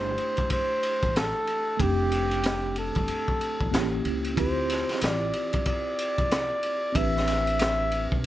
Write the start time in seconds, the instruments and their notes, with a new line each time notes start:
Already playing: upright bass G1, tine electric piano A3 D4 E4 G4, flugelhorn C5
0.18 ride
0.37 kick, ride
0.50 flugelhorn C5, kick, ride
0.83 ride
1.02 upright bass A1, kick, ride
1.16 flugelhorn A4, snare, hi-hat pedal, ride
1.47 ride
1.77 upright bass F1, tine electric piano A3 C4 D4, flugelhorn G4, kick, ride
1.83 tine electric piano G4
2.11 ride
2.31 ride
2.43 snare, hi-hat pedal, ride
2.76 flugelhorn A4, ride
2.95 upright bass G1, kick, ride
3.08 ride
3.28 kick
3.41 ride
3.61 upright bass A1, kick
3.71 upright bass A1, tine electric piano A#3 C#4 E4 G4, snare, hi-hat pedal, ride
4.05 upright bass C#2, ride
4.24 ride
4.34 upright bass D2, tine electric piano C4 E4 F4, kick, ride
4.39 tine electric piano G4, flugelhorn C5
4.70 snare, ride
4.89 snare, ride
5.01 upright bass A1, flugelhorn D5, snare, hi-hat pedal, ride
5.33 ride
5.53 kick, ride
5.65 flugelhorn D5, kick, ride
5.98 ride
6.18 upright bass C2, kick, ride
6.31 snare, hi-hat pedal, ride
6.63 ride
6.92 upright bass A1, tine electric piano C4 D4 G4, flugelhorn E5, kick, ride
6.98 tine electric piano B4
7.16 snare
7.27 snare, ride
7.47 ride
7.59 snare, hi-hat pedal, ride
7.91 ride
8.12 upright bass B1, kick